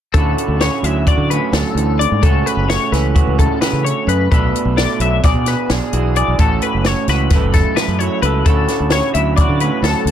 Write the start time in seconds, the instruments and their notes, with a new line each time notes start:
0.14 fingered electric bass D2, clean electric guitar D3 C#4 E4 F#4 A4, kick, closed hi-hat
0.38 closed hi-hat
0.48 fingered electric bass D2
0.61 clean electric guitar C#4 C#5, snare, closed hi-hat
0.83 fingered electric bass D2, clean electric guitar F#3 E4 E5, closed hi-hat
1.07 clean electric guitar F#4 D5, kick, closed hi-hat
1.17 fingered electric bass D3
1.30 clean electric guitar A2 C#4 B4, closed hi-hat
1.52 fingered electric bass D2, clean electric guitar F#3 A4, snare, closed hi-hat
1.75 fingered electric bass D2, clean electric guitar E3, closed hi-hat
1.99 clean electric guitar D3 D5, closed hi-hat
2.11 fingered electric bass G#2
2.23 fingered electric bass C#2, clean electric guitar C#3 A3 C#4 F#4 A4, kick, closed hi-hat
2.46 clean electric guitar B4, closed hi-hat
2.57 fingered electric bass F#1
2.69 clean electric guitar A3 C#5, snare, closed hi-hat
2.92 fingered electric bass C#2, clean electric guitar E3 C#4 B4, snare, closed hi-hat
3.15 clean electric guitar F#4, kick, closed hi-hat
3.27 fingered electric bass C#2
3.38 clean electric guitar C#3 A3 A4, kick, closed hi-hat
3.61 clean electric guitar E3 B4, snare, closed hi-hat
3.73 fingered electric bass C#3
3.84 clean electric guitar D3 C#5, closed hi-hat
4.07 fingered electric bass F#2, clean electric guitar C#3 B4, closed hi-hat
4.31 fingered electric bass B1, clean electric guitar B2 A3 D4 A4 B4, kick, closed hi-hat
4.56 closed hi-hat
4.65 fingered electric bass B1
4.77 clean electric guitar A3 D5, snare, closed hi-hat
4.99 fingered electric bass B1, clean electric guitar F#3 D4 E5, closed hi-hat
5.24 fingered electric bass B1, clean electric guitar B2 D4 F#4 G#4 D5, kick, snare, closed hi-hat
5.35 fingered electric bass B2
5.46 clean electric guitar B4, snare, closed hi-hat
5.70 fingered electric bass B1, clean electric guitar D4 G#4, snare, closed hi-hat
5.93 fingered electric bass B1, clean electric guitar E3 F#4, closed hi-hat
6.16 clean electric guitar G#4 D5, closed hi-hat
6.28 fingered electric bass B1
6.38 fingered electric bass A1, clean electric guitar A2 C#4 F#4 A4, kick, closed hi-hat
6.62 clean electric guitar B4, closed hi-hat
6.74 fingered electric bass F#1
6.85 clean electric guitar C#4 C#5, snare, closed hi-hat
7.07 fingered electric bass C#2, clean electric guitar E3 F#4 B4, snare, closed hi-hat
7.30 fingered electric bass F#1, clean electric guitar F#2 A3, kick, snare, closed hi-hat
7.35 clean electric guitar E4 A4
7.43 fingered electric bass F#1
7.53 clean electric guitar A4, kick, snare, closed hi-hat
7.76 clean electric guitar A3 B4, snare, closed hi-hat
7.88 fingered electric bass F#2
7.99 clean electric guitar F#3 E4 C#5, closed hi-hat
8.22 fingered electric bass C#2, clean electric guitar A4 B4, closed hi-hat
8.46 fingered electric bass D2, clean electric guitar D3 C#4 E4 F#4 A4, kick, closed hi-hat
8.68 snare, closed hi-hat
8.80 fingered electric bass D2
8.90 clean electric guitar C#4 C#5, snare, closed hi-hat
9.14 fingered electric bass D2, clean electric guitar F#3 E4 E5, closed hi-hat
9.37 clean electric guitar F#4 D5, kick, closed hi-hat
9.49 fingered electric bass D3
9.60 clean electric guitar A2 C#4 B4, closed hi-hat
9.82 fingered electric bass D2, clean electric guitar A4, snare, closed hi-hat
9.87 clean electric guitar F#3
10.05 fingered electric bass D2, closed hi-hat